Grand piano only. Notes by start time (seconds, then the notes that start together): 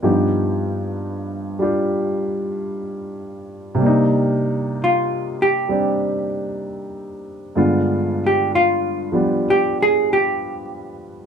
0.03 G2 F3 B3 D#4 G4
1.59 G3 D4 F4 G4
3.75 C3 G3
3.81 A#3 D4
3.86 D#4
5.69 G3 C4 D4
7.55 G2 D3 G#3 B3 F4
9.12 F3 G3 B3 D4